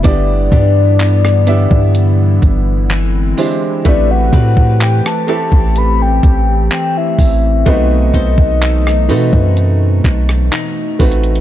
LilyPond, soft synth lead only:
\new Staff \with { instrumentName = "Soft synth lead" } { \time 4/4 \key a \dorian \tempo 4 = 63 d''2. r4 | d''16 fis''8. g''16 a''8. b''16 g''8. g''16 e''8. | dis''2. r4 | }